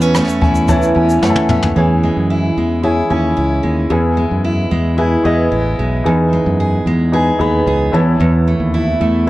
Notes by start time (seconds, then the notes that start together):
Already playing: E2 E4 B4 C#5 A5
0.01 C#4, shaker
0.15 A3, cross-stick, shaker
0.29 shaker
0.41 E2 E4 G#5, kick
0.55 shaker
0.68 E3 E4 B4 C#5 A5, kick, shaker
0.82 shaker
0.95 E2 C#4 G#5
1.10 shaker
1.22 F#2 A3 E4 B4 C#5 F#5 G#5, snare
1.30 A5
1.36 high tom
1.49 E2 C#4 E5, mid tom
1.63 D#2, floor tom
1.75 E2 E3 E4 G#4 C#5 G#5
2.03 G#3
2.17 F#2
2.30 E4
2.57 E2 G#3
2.82 E4 G#4 C#5 G#5
3.10 D#2 C#4 E4 G#4 C#5 G#5
3.37 C#2 E4
3.63 D#2 G#3
3.89 E2 E4 G#4 B4 G#5
4.17 G#3
4.31 F#2
4.44 E4
4.71 E2 G#3
4.97 E4 G#4 B4 G#5
5.23 E2 B3 E4 G#4 B4 D#5
5.51 A1 E4
5.79 B1 G#3
6.04 E2 D#4 G#4 B4 G#5
6.33 G#3
6.46 F#2
6.60 G#4
6.86 E2 G#3
7.12 D#4 G#4 B4 G#5
7.39 D#2 B3 D#4 G#4 B4 B5
7.66 C#2 G#4
7.92 E2 E4 B4 C#5 A5
8.20 E2
8.48 A3
8.60 D#2
8.74 E4
9.00 E2 A3
9.26 E4